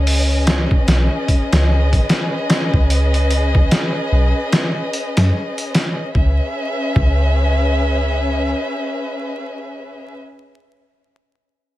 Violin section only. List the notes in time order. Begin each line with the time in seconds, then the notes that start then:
Already playing: C#4 G#4 B4 D#5
6.15 C#4 G#4 B4 E5